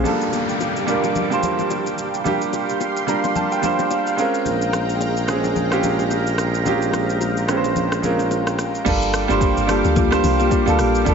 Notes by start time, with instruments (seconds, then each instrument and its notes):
0.04 grand piano G3 A3 D4 F4 A4, analog synth pad G4 F5 G5 D6, downlifter, low conga, shaker
0.11 grand piano A#3
0.21 shaker
0.33 high bongo, low bongo, shaker
0.49 shaker
0.60 high bongo, shaker
0.76 shaker
0.87 grand piano G3 A#3 D4 F4 A#4, low bongo, shaker
1.04 low bongo, shaker
1.15 low conga, shaker
1.30 grand piano G3 A#3 D4 F4 C5, shaker
1.43 low conga, shaker
1.59 low bongo, shaker
1.70 high bongo, shaker
1.86 shaker
1.98 shaker
2.14 shaker
2.24 grand piano G3 A#3 D4 F4 G4, analog synth pad C6, low conga, shaker
2.41 shaker
2.53 high bongo, low bongo, shaker
2.69 shaker
2.81 high bongo, shaker
2.97 shaker
3.07 grand piano G3 A#3 D4 F4 A#4 A#5, low bongo, shaker
3.24 low bongo, shaker
3.35 grand piano A5, low conga, shaker
3.52 grand piano G5, shaker
3.62 grand piano G3 A#3 D4 F4 C5, low conga, shaker
3.79 low bongo, shaker
3.91 grand piano F5, high bongo, shaker
4.07 grand piano F5, shaker
4.17 grand piano G#3 C4 C#4 F4 A#4, analog synth pad G#3 A#5, shaker
4.34 shaker
4.45 tuba A#1, low conga, shaker
4.62 shaker
4.73 cross-stick, high bongo, low bongo, shaker
4.89 shaker
5.01 high bongo, shaker
5.17 shaker
5.27 grand piano G#3 C4 C#4 F4 G#4, cross-stick, low bongo, shaker
5.44 low bongo, shaker
5.56 low conga, shaker
5.70 grand piano G#3 C4 C#4 F4 G4, cross-stick, shaker
5.83 low conga, shaker
5.99 low bongo, shaker
6.11 high bongo, shaker
6.27 shaker
6.38 cross-stick, shaker
6.54 shaker
6.64 grand piano G#3 C4 C#4 F4 G4, low conga, shaker
6.82 shaker
6.93 cross-stick, high bongo, low bongo, shaker
7.10 shaker
7.21 high bongo, shaker
7.37 shaker
7.47 grand piano G#3 C4 C#4 F4 B4, cross-stick, low bongo, shaker
7.57 grand piano C5
7.64 low bongo, shaker
7.76 low conga, shaker
7.92 cross-stick, shaker
8.02 grand piano G#3 C4 C#4 F4 A#4, low conga, shaker
8.19 low bongo, shaker
8.31 high bongo, shaker
8.47 cross-stick, shaker
8.59 cross-stick, shaker
8.75 shaker
8.85 log drum bass G1, grand piano G3 A#3 D4 F4 A4, analog synth pad G4 F5 G5 D6, kick, crash, low conga, shaker
9.02 shaker
9.13 cross-stick, open hi-hat, high bongo, low bongo, shaker
9.28 log drum bass G1, grand piano G3 A#3 D4 F4 C5, marimba A#3 F4 G4, shaker
9.41 kick, high bongo, shaker
9.57 log drum bass G1, shaker
9.67 grand piano G3 A#3 D4 F4 A4, marimba A#3 F4 G4, cross-stick, open hi-hat, low bongo, shaker
9.84 log drum bass D2, low bongo, shaker
9.96 marimba A#3 F4 G4, kick, low conga, shaker
10.11 grand piano G3 A#3 D4 F4 C5, cross-stick, shaker
10.24 log drum bass C2, open hi-hat, low conga, shaker
10.40 marimba A#3 F4 G4, low bongo, shaker
10.51 kick, high bongo, shaker
10.66 log drum bass D2, grand piano G3 A#3 D4 F4 A4, shaker
10.79 log drum bass A#1, marimba A#3 F4 G4, cross-stick, open hi-hat, shaker
10.95 shaker
11.05 log drum bass G1, grand piano G3 A#3 D4 F4 A4, kick, low conga, shaker